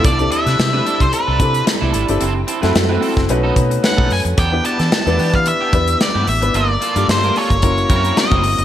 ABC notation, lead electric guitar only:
X:1
M:4/4
L:1/16
Q:"Swing 16ths" 1/4=111
K:C
V:1 name="Lead electric guitar"
d2 e4- e c B4 z4 | z12 ^f2 _a2 | g2 a4- a f e4 d2 e2 | d4 c2 _d6 _e4 |]